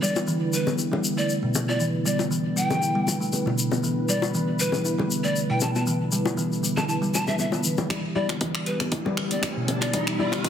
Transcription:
Already playing: analog synth pad D3 B3 E4 B4
0.01 kalimba G3, pan flute D5, shaker
0.15 high bongo, shaker
0.27 kalimba E3, shaker
0.53 kalimba G3, pan flute B4, shaker
0.67 low bongo, shaker
0.78 kalimba E4, shaker
0.92 kalimba G3, low bongo
1.04 shaker
1.17 kalimba A3, pan flute D5, shaker
1.29 shaker
1.43 kalimba B2
1.55 low bongo, shaker
1.68 kalimba B3, pan flute D5, high bongo, shaker
1.80 kalimba E3, shaker
2.05 kalimba G3, pan flute D5, shaker
2.19 high bongo, shaker
2.31 kalimba E3, shaker
2.56 kalimba G3, pan flute G5, shaker
2.70 low bongo, shaker
2.82 kalimba E4, shaker
2.95 kalimba G3
3.07 high bongo, low bongo, shaker
3.20 kalimba A3, shaker
3.33 low bongo, shaker
3.46 kalimba B2, high bongo
3.58 shaker
3.71 kalimba B3, high bongo, low bongo, shaker
3.83 kalimba E3, shaker
4.09 kalimba G3, pan flute D5, shaker
4.22 high bongo, shaker
4.34 kalimba E3, shaker
4.60 kalimba G3, pan flute B4, shaker
4.72 low bongo, shaker
4.85 kalimba E4, shaker
4.98 kalimba G3, low bongo
5.11 shaker
5.24 kalimba A3, pan flute D5, shaker
5.36 shaker
5.50 kalimba B2, pan flute G5
5.60 pan flute A5, low bongo, shaker
5.75 kalimba B3, pan flute A5, high bongo, shaker
5.87 kalimba E3, shaker
6.12 kalimba G3, shaker
6.26 high bongo, shaker
6.37 kalimba E3, shaker
6.52 shaker
6.63 kalimba G3, shaker
6.77 pan flute A5, low bongo, shaker
6.88 kalimba E4, pan flute A5, shaker
7.02 kalimba G3, shaker
7.14 pan flute A5, high bongo, low bongo, shaker
7.27 kalimba G3, pan flute E5, low bongo, shaker
7.39 pan flute E5, low bongo, shaker
7.52 kalimba B3, high bongo, shaker
7.64 kalimba E3, shaker
7.77 kalimba G3, high bongo, low bongo, shaker
7.90 analog synth pad D3 B3 E4 G4, kalimba E3, felt piano G3 E4 D5, finger snap, kick, closed hi-hat, riser
8.15 felt piano G3 E4 D5, kalimba G3, pan flute D5
8.29 finger snap, closed hi-hat, mid tom, high bongo
8.41 kalimba E3, kick, closed hi-hat
8.55 finger snap
8.66 kalimba G3, pan flute B4, closed hi-hat
8.80 finger snap, closed hi-hat, low bongo
8.92 kalimba E4, kick, closed hi-hat, mid tom
9.05 felt piano G3 E4 D5, kalimba G3, low bongo
9.17 finger snap, low bongo
9.31 kalimba A3, pan flute D5, closed hi-hat
9.43 finger snap, kick, closed hi-hat
9.56 kalimba B2
9.68 closed hi-hat, low bongo
9.81 kalimba B3, pan flute D5, finger snap, closed hi-hat, high bongo
9.93 kalimba E3, felt piano G3 E4 D5, kick, closed hi-hat
10.07 finger snap
10.19 kalimba G3, felt piano G3 E4 D5, pan flute D5
10.32 finger snap, closed hi-hat, mid tom, high bongo
10.44 kalimba E3, kick, closed hi-hat

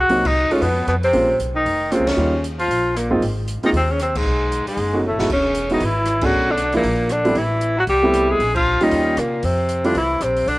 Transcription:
0.00 tenor saxophone F#4
0.09 upright bass C2, grand piano F#3 A#3 C4 D#4 F#4, open hi-hat
0.25 tenor saxophone D#4, kick, crash
0.50 grand piano G#3 A3 C#4 D#4 F4, tenor saxophone C#4, muted upright bass stroke, open hi-hat
0.61 upright bass F2, baritone saxophone B2, tenor saxophone B3, open hi-hat
0.87 upright bass F2, baritone saxophone B2, tenor saxophone B3, cross-stick, closed hi-hat
1.03 baritone saxophone C3, tenor saxophone C4, open hi-hat
1.13 upright bass A#1, grand piano G#3 A#3 C4 C#4 F4, open hi-hat
1.39 upright bass B1, closed hi-hat
1.54 baritone saxophone D#3, tenor saxophone D#4
1.65 upright bass F1, open hi-hat
1.92 baritone saxophone C3, grand piano G#3 A#3 C4 C#4 F4, tenor saxophone C4, cross-stick, closed hi-hat
1.99 upright bass C2
2.07 upright bass D2, baritone saxophone C#3, tenor saxophone C#4, snare, ride
2.17 upright bass D#2, grand piano G3 A#3 C#4 D#4 F4
2.44 closed hi-hat
2.59 baritone saxophone F3, tenor saxophone F4, open hi-hat
2.68 upright bass A#1, open hi-hat
2.95 baritone saxophone A#2, tenor saxophone A#3, cross-stick, closed hi-hat
3.10 upright bass G1, grand piano G#3 A#3 C4 D#4 F4
3.20 upright bass G#1, open hi-hat
3.48 closed hi-hat
3.63 baritone saxophone D#3, grand piano G#3 A#3 C4 D#4 F4, tenor saxophone D#4, open hi-hat
3.73 upright bass D#2, baritone saxophone C3, open hi-hat
3.77 tenor saxophone C4
3.90 baritone saxophone C#3, tenor saxophone C#4
4.00 baritone saxophone C3, tenor saxophone C4, cross-stick, closed hi-hat
4.15 baritone saxophone G#2, tenor saxophone G#3, kick, crash
4.25 upright bass B1
4.52 closed hi-hat
4.66 baritone saxophone G#2, tenor saxophone G#3, muted upright bass stroke, open hi-hat
4.77 upright bass F#1, open hi-hat
4.93 grand piano A3 B3 C#4 D#4 F#4
5.06 baritone saxophone A2, tenor saxophone A3
5.12 upright bass A1
5.19 upright bass F#1, grand piano G#3 B3 D#4 E4 F#4, snare
5.29 upright bass E1, baritone saxophone C#3, tenor saxophone C#4, kick, crash
5.55 closed hi-hat
5.70 baritone saxophone D#3, grand piano G#3 B3 D#4 E4 F#4, tenor saxophone D#4, open hi-hat
5.80 upright bass G#1, baritone saxophone E3, open hi-hat
5.85 tenor saxophone E4
6.06 cross-stick, closed hi-hat
6.21 baritone saxophone F#3, grand piano A3 B3 C#4 D4 G#4, kick, crash
6.25 tenor saxophone F#4
6.33 upright bass B1
6.50 baritone saxophone D3, tenor saxophone D4
6.58 closed hi-hat
6.73 baritone saxophone A#2, grand piano F3 G#3 A#3 D4 E4, open hi-hat
6.77 tenor saxophone A#3
6.83 upright bass A#1, open hi-hat
7.09 baritone saxophone D3, tenor saxophone D4, cross-stick, closed hi-hat
7.25 grand piano G3 A3 B3 C4 E4, open hi-hat
7.35 upright bass A1, baritone saxophone E3, tenor saxophone E4, open hi-hat
7.61 closed hi-hat
7.77 baritone saxophone F#3, tenor saxophone F#4
7.87 upright bass C2, baritone saxophone G3, tenor saxophone G4, open hi-hat
8.03 grand piano G3 A3 B3 C4 E4
8.14 cross-stick, closed hi-hat
8.29 baritone saxophone G#3, tenor saxophone G#4
8.39 upright bass A#1, open hi-hat
8.54 baritone saxophone F3, tenor saxophone F4, kick, crash
8.81 baritone saxophone D#3, grand piano G3 A#3 C#4 D#4 F4, tenor saxophone D#4, open hi-hat
8.91 upright bass D#2, open hi-hat
9.17 baritone saxophone A#2, upright bass C3, tenor saxophone A#3, cross-stick, closed hi-hat
9.43 upright bass F2, baritone saxophone C3, tenor saxophone C4, open hi-hat
9.69 closed hi-hat
9.84 baritone saxophone D3, grand piano G3 A3 C4 E4 F4, tenor saxophone D4, open hi-hat
9.95 upright bass C2, baritone saxophone E3, tenor saxophone E4, open hi-hat
10.21 upright bass A#1, baritone saxophone C3, tenor saxophone C4, cross-stick, closed hi-hat
10.37 open hi-hat
10.46 upright bass B1, baritone saxophone D3, tenor saxophone D4, open hi-hat

